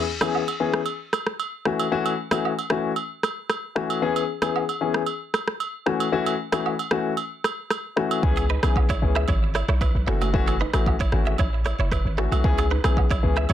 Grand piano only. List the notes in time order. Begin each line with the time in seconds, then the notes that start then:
0.21 E3 B3 C#4 G#4
0.60 E3 B3 C#4 G#4
1.65 E3 A3 C#4 F#4
1.91 E3 A3 C#4 F#4
2.31 E3 A3 C#4 F#4
2.70 E3 A3 C#4 F#4
3.75 E3 A3 C#4 F#4
4.02 E3 B3 C#4 G#4
4.42 E3 B3 C#4 G#4
4.81 E3 B3 C#4 G#4
5.86 E3 A3 C#4 F#4
6.12 E3 A3 C#4 F#4
6.52 E3 A3 C#4 F#4
6.91 E3 A3 C#4 F#4
7.96 E3 A3 C#4 F#4
8.23 E3 B3 C#4 G#4
8.63 E3 B3 C#4 G#4
9.02 E3 B3 C#4 G#4
10.07 E3 A3 C#4 F#4
10.33 E3 A3 C#4 F#4
10.73 E3 A3 C#4 F#4
11.12 E3 A3 C#4 F#4
12.18 E3 A3 C#4 F#4
12.44 E3 B3 C#4 G#4
12.84 E3 B3 C#4 G#4
13.23 E3 B3 C#4 G#4